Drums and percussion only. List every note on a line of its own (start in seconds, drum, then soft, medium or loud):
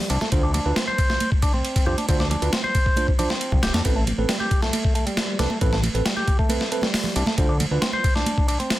0.10 ride medium
0.21 snare soft
0.21 high conga medium
0.32 kick loud
0.32 ride medium
0.54 ride medium
0.54 high conga medium
0.54 low conga medium
0.76 snare loud
0.76 ride medium
0.88 high conga medium
0.98 kick loud
0.98 ride medium
1.10 snare soft
1.20 ride medium
1.20 high conga medium
1.32 kick medium
1.42 kick loud
1.42 ride medium
1.54 high conga medium
1.65 ride medium
1.76 kick loud
1.76 ride medium
1.86 low conga medium
1.98 ride medium
1.98 high conga medium
2.09 kick loud
2.09 ride medium
2.20 snare soft
2.31 ride medium
2.31 high conga medium
2.31 low conga medium
2.42 ride soft
2.53 snare loud
2.53 ride medium
2.64 high conga medium
2.75 kick loud
2.75 ride medium
2.86 kick medium
2.96 ride medium
2.96 high conga medium
3.08 kick medium
3.19 ride medium
3.19 low conga medium
3.30 snare medium
3.30 high conga medium
3.41 ride medium
3.52 kick medium
3.52 low conga medium
3.63 snare loud
3.63 ride medium
3.74 snare loud
3.74 ride medium
3.74 high conga loud
3.85 kick loud
3.85 ride medium
4.07 ride medium
4.07 high conga medium
4.07 low conga medium
4.29 snare loud
4.29 ride medium
4.40 high conga medium
4.51 kick loud
4.51 ride medium
4.63 snare soft
4.73 ride medium
4.73 high conga medium
4.85 kick loud
4.95 ride medium
5.07 ride soft
5.07 high conga medium
5.17 snare loud
5.17 ride medium
5.39 snare medium
5.39 ride medium
5.39 low conga medium
5.50 high conga loud
5.61 kick loud
5.61 ride medium
5.73 snare medium
5.83 ride medium
5.83 high conga loud
5.83 low conga medium
5.95 ride soft
6.06 snare loud
6.06 ride medium
6.17 high conga medium
6.28 kick loud
6.28 ride medium
6.39 kick medium
6.49 ride medium
6.49 high conga loud
6.61 snare medium
6.72 ride medium
6.82 snare medium
6.82 high conga medium
6.94 snare loud
6.94 open hi-hat medium
7.04 snare soft
7.04 low conga medium
7.16 ride medium
7.26 snare soft
7.26 high conga loud
7.38 kick loud
7.38 ride medium
7.60 ride medium
7.60 high conga medium
7.60 low conga medium
7.82 snare loud
7.82 ride medium
7.93 high conga medium
8.04 kick loud
8.04 ride medium
8.16 snare soft
8.26 ride medium
8.26 high conga loud
8.38 kick medium
8.48 ride medium
8.60 ride soft
8.60 high conga medium
8.70 snare loud
8.70 ride medium